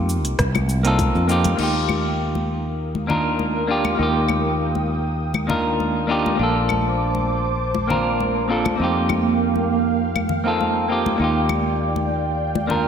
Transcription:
0.00 0.25 F2 medium
0.00 0.64 A#3 medium
0.00 0.65 C4 medium
0.00 0.66 D#4 medium
0.00 0.67 F4 medium
0.00 0.68 G4 medium
0.09 cabasa medium
0.25 0.38 C2 loud
0.25 closed hi-hat medium
0.25 cabasa soft
0.39 1.09 C2 medium
0.39 kick loud
0.39 cross-stick medium
0.39 closed hi-hat soft
0.39 cabasa soft
0.55 high conga medium
0.55 cabasa soft
0.55 claves medium
0.69 cabasa medium
0.83 1.25 A#3 medium
0.83 1.26 C4 medium
0.83 1.26 D#4 medium
0.83 1.26 F4 medium
0.83 1.27 A4 medium
0.83 closed hi-hat medium
0.83 cabasa soft
0.99 kick loud
0.99 closed hi-hat soft
0.99 high conga medium
0.99 cabasa soft
1.15 1.54 F2 medium
1.15 cabasa soft
1.27 1.54 A#3 medium
1.27 1.55 C4 medium
1.27 1.56 D#4 medium
1.27 1.56 F4 medium
1.27 cabasa medium
1.31 1.57 G4 medium
1.44 closed hi-hat medium
1.44 high conga loud
1.44 cabasa soft
1.55 3.96 D#2 medium
1.55 3.04 A#3 medium
1.55 1.59 D4 medium
1.55 6.35 A#4 medium
1.55 6.35 F5 medium
1.55 6.35 G5 medium
1.55 6.35 D#6 medium
1.55 crash medium
1.59 3.06 D#4 medium
1.59 3.07 F4 medium
1.59 3.08 G4 medium
1.89 high conga medium
1.89 claves medium
2.35 high conga medium
2.95 high conga medium
3.07 3.65 A#3 medium
3.07 3.65 D4 medium
3.07 3.66 D#4 medium
3.07 3.66 F4 medium
3.07 3.67 A#4 medium
3.07 low conga medium
3.39 high conga medium
3.67 3.94 A#3 medium
3.67 3.95 D4 medium
3.67 3.96 F4 medium
3.67 3.97 G4 medium
3.85 high conga medium
3.85 claves medium
3.95 5.44 A#3 medium
3.95 5.46 D#4 medium
3.99 6.36 D#2 medium
3.99 5.47 F4 medium
3.99 5.48 G4 medium
4.28 high conga medium
4.28 claves medium
4.75 high conga medium
5.34 high conga medium
5.34 claves medium
5.47 6.05 A#3 medium
5.47 6.05 D4 medium
5.47 6.06 D#4 medium
5.47 6.06 F4 medium
5.47 6.07 A#4 medium
5.47 low conga medium
5.80 high conga medium
6.07 6.34 A#3 medium
6.07 6.35 D4 medium
6.07 6.36 D#4 medium
6.07 6.36 F4 medium
6.11 6.37 G4 medium
6.26 high conga medium
6.35 8.76 A#1 medium
6.35 7.84 A#3 medium
6.35 6.39 C4 medium
6.35 7.86 D4 medium
6.40 7.87 F4 medium
6.40 7.88 A4 medium
6.40 8.77 C5 medium
6.40 8.77 A5 medium
6.40 8.77 D6 medium
6.69 high conga medium
6.69 claves medium
7.15 high conga medium
7.74 high conga medium
7.87 8.45 A#3 medium
7.87 8.46 C4 medium
7.87 8.46 D4 medium
7.87 8.46 F4 medium
7.87 8.47 A#4 medium
7.87 low conga medium
8.20 high conga medium
8.48 8.75 A#3 medium
8.48 8.76 C4 medium
8.48 8.76 D4 medium
8.48 8.77 F4 medium
8.48 8.77 A4 medium
8.65 high conga medium
8.65 claves soft
8.76 11.17 F2 medium
8.76 10.24 A#3 medium
8.76 10.25 C4 medium
8.76 10.26 D#4 medium
8.80 11.17 A#3 medium
8.80 10.27 F4 medium
8.80 10.28 G4 medium
8.80 11.17 F5 medium
8.80 12.88 G5 medium
9.09 high conga medium
9.09 claves medium
9.56 high conga medium
10.16 high conga medium
10.16 claves medium
10.29 low conga medium
10.44 10.85 A#3 medium
10.44 10.86 C4 medium
10.44 10.86 D#4 medium
10.44 10.87 F4 medium
10.44 10.87 A4 medium
10.61 high conga medium
10.88 11.15 A#3 medium
10.88 11.16 C4 medium
10.88 11.16 D#4 medium
10.88 11.17 F4 medium
10.88 11.17 G4 medium
11.06 high conga medium
11.16 12.88 D#2 medium
11.16 12.64 A#3 medium
11.16 11.19 D4 medium
11.16 12.66 D#4 medium
11.16 12.88 D5 medium
11.16 12.88 F5 medium
11.22 12.67 F4 medium
11.22 12.68 G4 medium
11.49 high conga medium
11.49 claves medium
11.96 high conga medium
12.55 high conga medium
12.67 12.88 A#3 medium
12.67 12.88 D4 medium
12.67 12.88 F4 medium
12.67 12.88 A#4 medium
12.67 low conga medium

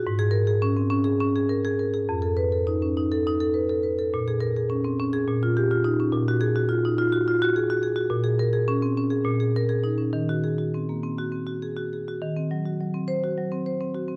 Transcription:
0.07 2.02 G#2 medium
0.19 0.42 G#4 medium
0.31 0.46 A#4 medium
0.47 0.70 G#4 medium
0.62 0.85 C#4 medium
0.77 0.90 C4 medium
0.90 1.13 C#4 medium
1.04 1.27 G#4 medium
1.20 1.43 C#4 medium
1.36 1.57 G#4 medium
1.49 1.63 A#4 medium
1.65 1.86 G#4 medium
1.79 1.92 A#4 medium
1.94 2.07 G#4 medium
2.09 4.09 F2 medium
2.22 2.45 A4 medium
2.37 2.50 B4 medium
2.52 2.74 A4 medium
2.67 2.89 D#4 medium
2.82 2.95 C#4 medium
2.97 3.19 D#4 medium
3.12 3.34 A4 medium
3.27 3.48 D#4 medium
3.40 3.63 A4 medium
3.54 3.68 B4 medium
3.69 3.92 A4 medium
3.83 3.97 B4 soft
3.99 4.12 A4 medium
4.14 5.25 A#2 medium
4.28 4.50 G#4 medium
4.41 4.55 A#4 medium
4.56 4.79 G#4 medium
4.70 4.93 C#4 medium
4.84 4.98 C4 medium
5.00 5.22 C#4 medium
5.13 5.27 G#4 medium
5.28 6.11 A#2 medium
5.43 5.65 F4 medium
5.57 5.70 G4 medium
5.71 5.93 F4 medium
5.84 6.07 D#4 medium
6.00 6.13 C#4 medium
6.13 8.08 A#2 medium
6.28 6.51 F#4 medium
6.41 6.56 G#4 medium
6.56 6.79 F#4 medium
6.69 6.93 F4 medium
6.85 6.99 D#4 medium
6.98 7.21 F4 medium
7.12 7.36 F#4 medium
7.28 7.50 F4 medium
7.42 7.65 F#4 medium
7.56 7.70 G#4 medium
7.70 7.92 F#4 medium
7.83 7.97 G#4 medium
7.96 8.11 F#4 medium
8.10 9.21 A#2 medium
8.24 8.48 G#4 medium
8.39 8.54 A#4 medium
8.53 8.77 G#4 medium
8.68 8.91 C#4 medium
8.82 8.97 C4 medium
8.97 9.20 C#4 medium
9.10 9.25 G#4 medium
9.24 10.10 A#2 medium
9.40 9.63 G#4 medium
9.56 9.70 A#4 medium
9.69 9.93 G#4 medium
9.84 10.07 D#4 medium
9.98 10.13 C#4 soft
10.13 12.17 D#3 medium
10.29 10.52 F#4 medium
10.44 10.58 G#4 medium
10.58 10.82 F#4 soft
10.74 10.97 C4 medium
10.89 11.03 A#3 soft
11.03 11.26 C4 medium
11.19 11.41 F#4 medium
11.32 11.55 C4 medium
11.47 11.70 F#4 medium
11.62 11.77 G#4 medium
11.77 12.00 F#4 medium
11.93 12.07 G#4 soft
12.08 12.22 F#4 medium
12.22 14.16 D#3 medium
12.37 12.59 C4 medium
12.51 12.74 F#3 medium
12.66 12.88 F#4 soft
12.80 13.02 F#3 medium
12.94 13.16 C4 medium
13.08 13.30 C5 medium
13.24 13.46 F#4 medium
13.38 13.60 F#3 medium
13.52 13.74 C4 medium
13.66 13.88 C5 medium
13.81 14.03 C4 medium
13.95 14.16 F#4 medium
14.08 14.16 C4 medium

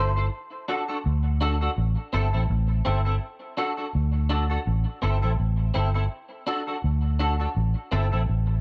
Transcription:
0.00 0.28 G1 medium
0.00 0.10 E4 medium
0.00 0.10 A4 loud
0.00 0.11 C5 medium
0.16 0.25 E4 medium
0.16 0.25 A4 medium
0.16 0.25 C5 medium
0.68 0.82 D4 medium
0.68 0.83 F#4 medium
0.68 0.83 A4 loud
0.88 0.98 D4 medium
0.88 0.97 F#4 medium
0.88 0.97 A4 medium
1.06 1.67 D2 loud
1.41 1.55 D4 medium
1.41 1.55 F#4 medium
1.41 1.55 A4 medium
1.61 1.70 D4 medium
1.61 1.70 F#4 medium
1.61 1.70 A4 medium
1.78 1.95 A1 loud
2.13 2.31 G1 loud
2.13 2.27 C4 medium
2.13 2.27 E4 medium
2.13 2.28 A4 loud
2.33 2.47 A1 medium
2.33 2.42 C4 medium
2.33 2.42 E4 medium
2.33 2.42 A4 medium
2.50 2.81 A1 loud
2.85 3.17 G1 medium
2.85 2.99 C4 medium
2.85 3.00 E4 medium
2.85 3.00 A4 medium
3.05 3.15 C4 medium
3.05 3.14 E4 medium
3.05 3.14 A4 medium
3.57 3.71 D4 medium
3.57 3.72 F#4 medium
3.57 3.72 A4 loud
3.77 3.87 D4 soft
3.77 3.86 F#4 medium
3.77 3.86 A4 medium
3.95 4.57 D2 loud
4.29 4.44 D4 medium
4.29 4.44 F#4 medium
4.29 4.44 A4 medium
4.50 4.59 D4 soft
4.50 4.59 F#4 medium
4.50 4.58 A4 medium
4.67 4.84 A1 loud
5.02 5.20 G1 loud
5.02 5.16 C4 medium
5.02 5.17 E4 medium
5.02 5.17 A4 medium
5.22 5.37 A1 medium
5.22 5.32 C4 medium
5.22 5.31 E4 medium
5.22 5.31 A4 medium
5.40 5.70 A1 medium
5.74 6.06 G1 medium
5.74 5.88 C4 medium
5.74 5.89 E4 medium
5.74 5.89 A4 medium
5.94 6.04 C4 soft
5.94 6.04 E4 medium
5.94 6.03 A4 medium
6.47 6.61 D4 medium
6.47 6.61 F#4 medium
6.47 6.62 A4 medium
6.67 6.76 D4 soft
6.67 6.76 F#4 medium
6.67 6.76 A4 medium
6.84 7.46 D2 medium
7.19 7.34 D4 medium
7.19 7.34 F#4 medium
7.19 7.34 A4 medium
7.40 7.49 D4 soft
7.40 7.48 F#4 medium
7.40 7.48 A4 medium
7.57 7.74 A1 loud
7.92 8.10 G1 loud
7.92 8.06 C4 medium
7.92 8.06 E4 loud
7.92 8.06 A4 loud
8.12 8.26 A1 medium
8.12 8.21 C4 medium
8.12 8.21 E4 medium
8.12 8.21 A4 medium
8.29 8.60 A1 loud

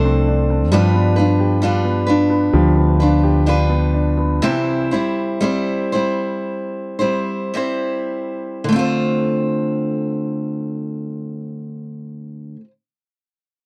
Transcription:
0.00 0.72 C2 medium
0.00 0.71 F3 medium
0.00 0.71 A3 medium
0.00 0.26 D4 medium
0.00 0.72 D4 medium
0.00 0.73 A4 medium
0.00 0.74 C5 medium
0.05 0.49 C4 medium
0.28 0.82 D4 medium
0.50 0.82 C4 medium
0.72 2.50 G2 medium
0.72 2.52 F3 medium
0.72 1.17 G3 medium
0.72 1.18 D4 medium
0.72 1.17 F4 medium
0.72 1.38 G4 medium
0.72 1.15 B4 medium
0.95 1.83 B3 medium
1.16 1.61 D4 medium
1.16 1.62 D4 soft
1.16 1.62 F4 soft
1.16 1.62 B4 soft
1.40 2.52 G4 medium
1.62 2.08 G3 medium
1.62 2.05 D4 medium
1.62 2.08 D4 medium
1.62 2.07 F4 medium
1.62 2.05 B4 medium
1.85 2.29 B3 medium
2.07 2.98 D4 medium
2.07 3.01 D4 medium
2.07 3.00 F4 medium
2.07 2.99 B4 medium
2.30 2.74 B3 medium
2.53 4.39 D2 medium
2.53 4.53 F3 medium
2.53 3.22 G4 medium
2.76 3.68 B3 soft
3.00 3.45 D4 medium
3.00 3.46 D4 soft
3.00 3.47 F4 soft
3.00 3.47 B4 medium
3.23 4.53 G4 medium
3.46 4.41 G3 medium
3.46 4.43 D4 medium
3.46 3.92 D4 medium
3.46 4.43 F4 medium
3.46 4.43 B4 medium
3.70 4.16 B3 medium
3.94 4.53 D4 soft
4.18 4.52 B3 medium
4.42 4.92 C3 medium
4.42 4.92 E3 medium
4.42 4.92 G3 medium
4.42 4.92 C4 medium
4.42 4.91 E4 medium
4.42 4.90 C5 medium
4.91 5.39 G3 soft
4.91 5.41 C4 soft
4.91 5.41 E4 medium
4.91 5.42 C5 medium
5.41 5.93 G3 medium
5.41 5.93 C4 medium
5.41 5.92 E4 medium
5.41 5.91 C5 medium
5.92 7.00 G3 soft
5.92 7.00 C4 soft
5.92 6.99 E4 medium
5.92 6.98 C5 soft
6.99 7.52 G3 soft
6.99 7.53 C4 soft
6.99 7.54 E4 soft
6.99 7.54 C5 medium
7.54 8.68 G3 medium
7.54 8.69 C4 medium
7.54 8.69 E4 medium
7.54 8.70 C5 medium
8.64 12.56 D3 medium
8.69 12.60 A3 medium
8.69 12.64 C4 medium
8.76 12.67 F4 medium
8.76 12.70 C5 medium

